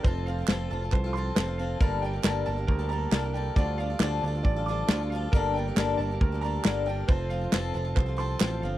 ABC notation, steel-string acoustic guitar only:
X:1
M:4/4
L:1/16
Q:1/4=136
K:Gm
V:1 name="Steel-string acoustic guitar"
[F,CFA]2 [F,CFA] [CFA] [F,CFA]2 [F,CFA] [CFA]2 [CFA] [F,CFA]2 [F,CFA] [CFA] [F,CFA]2 | [G,,D,G,B,DA]2 [G,B,DA] [G,B,DA] [G,,D,G,B,DA]2 [G,B,DA] [G,B,DA]2 [G,B,DA] [G,B,DA]2 [G,,D,G,B,DA] [G,B,DA] [G,B,DA]2 | [D,F,DFA]2 [F,DFA] [DFA] [D,F,DFA]2 [F,DFA] [DFA]2 [DFA] [F,DFA]2 [D,F,DFA] [DFA] [F,DFA]2 | [G,,D,G,B,DA]2 [G,B,DA] [G,B,DA] [G,,D,G,B,DA]2 [G,B,DA] [G,B,DA]2 [G,B,DA] [G,B,DA]2 [G,,D,G,B,DA]2 [G,B,DA]2 |
[F,CFA]2 [F,CFA] [CFA] [F,CFA]2 [F,CFA] [CFA]2 [CFA] [F,CFA]2 [F,CFA] [CFA] [F,CFA]2 |]